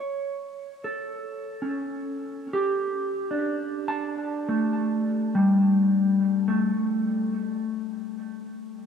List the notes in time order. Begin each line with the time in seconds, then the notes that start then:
Already playing: C#5
0.84 A4
1.62 C#4
2.53 G4
3.31 D4
3.88 A5
4.49 A3
5.35 G3
6.48 A3